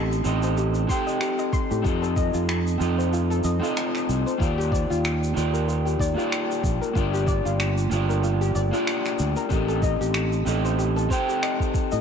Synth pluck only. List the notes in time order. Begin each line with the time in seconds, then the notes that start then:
0.43 C5
0.58 G4
0.89 C6
1.07 D#5
1.21 G4
1.39 D#5
1.53 C6
1.71 G4
1.85 F4
2.02 A4
2.17 D#5
2.34 F4
2.98 C5
3.13 F4
3.30 A4
3.44 D#5
3.62 F4
4.26 C5
4.41 F4
4.58 G4
4.72 D5
4.90 F4
5.54 A#4
5.68 F4
5.85 G4
6.00 D5
6.18 F4
6.81 A#4
6.96 F4
7.13 G4
7.28 D5
7.45 F4
8.09 A#4
8.23 F4
8.41 G4
8.55 D5
8.73 F4
9.36 A#4
9.50 G4
9.68 A4
9.83 D#5
10.01 G4
10.65 C5
10.79 G4
10.96 A4
11.11 C5
11.28 G4
11.43 D#5
11.92 D#5